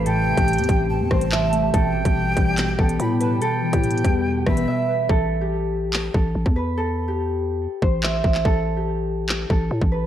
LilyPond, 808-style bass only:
\new Staff \with { instrumentName = "808-style bass" } { \clef bass \time 4/4 \key a \minor \tempo 4 = 143 a,,8. a,,8 e,16 a,,8. e,16 a,,4. | a,,8. a,,8. a,,4 a,,8 a,4 | r8. a,8. e,4 a,,8 r4 | a,,2~ a,,8 a,,8 a,,16 e,8.~ |
e,2~ e,16 r16 a,,4 a,,8 | a,,2~ a,,8 a,,8 a,16 a,,8. | }